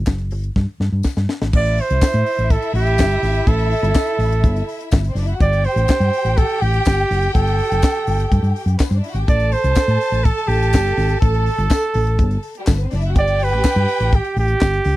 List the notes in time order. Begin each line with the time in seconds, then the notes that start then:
0.06 F#1, kick, snare, clap, tambourine
0.18 closed hi-hat
0.31 G1, open hi-hat
0.44 closed hi-hat
0.56 G2, kick, snare
0.80 G2, snare
0.92 G2
1.03 kick, snare, tambourine
1.17 G2, snare
1.29 snare
1.42 G#1, snare
1.53 A1 E4 D5 E5, kick, crash
1.65 closed hi-hat
1.78 C5, open hi-hat
1.90 C2, closed hi-hat
2.01 muted fingered electric bass stroke, kick, snare, clap, tambourine
2.13 A2, closed hi-hat
2.26 open hi-hat
2.39 A1, closed hi-hat
2.50 A4, kick, closed hi-hat
2.62 closed hi-hat
2.74 A1 G4, open hi-hat
2.87 closed hi-hat
2.98 G1, kick, snare, clap, tambourine
3.12 closed hi-hat
3.23 G#1, snare, open hi-hat
3.34 closed hi-hat
3.47 A1 A4, kick, closed hi-hat
3.59 closed hi-hat
3.71 open hi-hat
3.83 G1, closed hi-hat
3.94 kick, snare, clap, tambourine
4.07 closed hi-hat
4.19 A1, open hi-hat
4.32 closed hi-hat
4.44 G1, kick, closed hi-hat
4.56 closed hi-hat
4.69 open hi-hat
4.81 closed hi-hat
4.91 G1, kick, snare, clap, tambourine
5.04 closed hi-hat
5.09 C4 C5
5.15 F#1 D4 D5, snare, open hi-hat
5.26 E4 E5, closed hi-hat
5.33 F#4 F#5
5.40 G1 G4 D5 G5, kick, closed hi-hat
5.53 closed hi-hat
5.64 C5, open hi-hat
5.76 A1, closed hi-hat
5.88 kick, snare, clap, tambourine
6.00 G2, closed hi-hat
6.13 open hi-hat
6.25 A1, closed hi-hat
6.37 A4, kick, closed hi-hat
6.49 closed hi-hat
6.61 A1 G4, open hi-hat
6.74 closed hi-hat
6.85 G1, kick, snare, clap, tambourine
6.99 closed hi-hat
7.10 F#1, snare, open hi-hat
7.22 closed hi-hat
7.34 G1 A4, kick, closed hi-hat
7.47 closed hi-hat
7.59 open hi-hat
7.72 F#1, closed hi-hat
7.82 kick, snare, clap, tambourine
7.95 closed hi-hat
8.07 G1, open hi-hat
8.20 closed hi-hat
8.32 G2, kick, closed hi-hat
8.43 G2, closed hi-hat
8.56 open hi-hat
8.66 F#2, closed hi-hat
8.79 B3 B4, kick, snare, clap, tambourine
8.88 G2 C4 C5
8.92 D4, closed hi-hat
8.96 D5
9.04 E4 E5, open hi-hat
9.11 G#1 F#4 F#5, closed hi-hat
9.19 G4 G5
9.28 A1 A4 D5 A5, kick, closed hi-hat
9.40 closed hi-hat
9.52 C5, open hi-hat
9.64 C2, closed hi-hat
9.75 muted fingered electric bass stroke, kick, snare, clap, tambourine
9.88 A2, closed hi-hat
10.01 open hi-hat
10.12 A1, closed hi-hat
10.24 A4, kick, closed hi-hat
10.38 closed hi-hat
10.47 A1 G4, open hi-hat
10.62 closed hi-hat
10.73 G1, kick, snare, clap, tambourine
10.87 closed hi-hat
10.97 G#1, snare, open hi-hat
11.09 closed hi-hat
11.21 A1 A4, kick, closed hi-hat
11.34 closed hi-hat
11.46 open hi-hat
11.58 G1, closed hi-hat
11.70 kick, snare, clap, tambourine
11.82 closed hi-hat
11.94 A1, open hi-hat
12.07 closed hi-hat
12.19 G1, kick, closed hi-hat
12.31 closed hi-hat
12.43 open hi-hat
12.55 closed hi-hat
12.59 G3 G4
12.67 G1 A3 A4, kick, snare, clap, tambourine
12.76 B3 B4, closed hi-hat
12.84 C4 C5
12.91 F#1 D4 D5, snare, open hi-hat
13.01 E4 E5, closed hi-hat
13.09 F#4 F#5
13.15 G1 G4 D5 G5, kick, closed hi-hat
13.27 closed hi-hat
13.39 open hi-hat
13.44 B4
13.53 A1, closed hi-hat
13.64 muted fingered electric bass stroke, kick, snare, clap, tambourine
13.76 G2, closed hi-hat
13.88 open hi-hat
14.00 A1, closed hi-hat
14.12 G4, kick, closed hi-hat
14.25 closed hi-hat
14.36 A1 G4, open hi-hat
14.48 closed hi-hat
14.61 G1, kick, snare, clap, tambourine
14.73 closed hi-hat
14.84 C#2, snare, open hi-hat